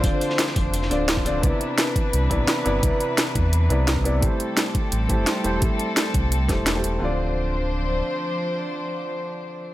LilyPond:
<<
  \new Staff \with { instrumentName = "Grand piano" } { \time 4/4 \key d \dorian \tempo 4 = 172 <d c' f' d''>2~ <d c' f' d''>8 <d c' f' d''>4 <d c' f' d''>8 | <c b e' d''>2~ <c b e' d''>8 <c b e' d''>4 <c b e' d''>8 | <c b e' d''>2~ <c b e' d''>8 <c b e' d''>4 <c b e' d''>8 | <a e' g' c''>2~ <a e' g' c''>8 <a e' g' c''>4 <a e' g' c''>8 |
<a e' g' c''>2~ <a e' g' c''>8 <a e' g' c''>8. <a e' g' c''>8. | <d c' f' d''>1~ | <d c' f' d''>1 | }
  \new Staff \with { instrumentName = "String section" } { \time 4/4 \key d \dorian << { <f c''>1 | <e b'>1~ | <e b'>1 | <g a'>1~ |
<g a'>1 | <f d' c''>1~ | <f d' c''>1 | } \\ { d'1~ | d'1~ | d'1 | c'1~ |
c'1 | r1 | r1 | } >> }
  \new Staff \with { instrumentName = "Sub bass" } { \clef bass \time 4/4 \key d \dorian d,,16 r4 r16 f,,4 d,,4. | c,16 r4. r16 c,8 c,16 g,,16 r8 g,,8 | c,16 r4 r16 e,4 c,4. | a,,16 r4. r16 a,,8 a,,16 e,,16 r8 e,,8 |
a,,16 r4 r16 c,4 e,,4 e,,8 | d,,2. r4 | r1 | }
  \new DrumStaff \with { instrumentName = "Drums" } \drummode { \time 4/4 <hh bd>8 hh16 sn16 <hh sn>16 sn16 <hh bd>8 hh16 sn16 hh8 <hh sn>16 bd16 hh8 | <hh bd>8 hh8 <hh sn>8 <hh bd>8 hh8 <hh bd>8 <hh sn>8 hh8 | <hh bd>8 hh8 <hh sn>8 <hh bd>8 hh8 hh8 <hh sn>16 bd16 hh8 | <hh bd>8 hh8 <hh sn>8 <hh bd>8 hh8 <hh bd>8 <hh sn>8 hh8 |
<hh bd>8 hh8 <hh sn>8 <hh bd>8 hh8 <hh bd sn>8 <hh sn>8 hh8 | r4 r4 r4 r4 | r4 r4 r4 r4 | }
>>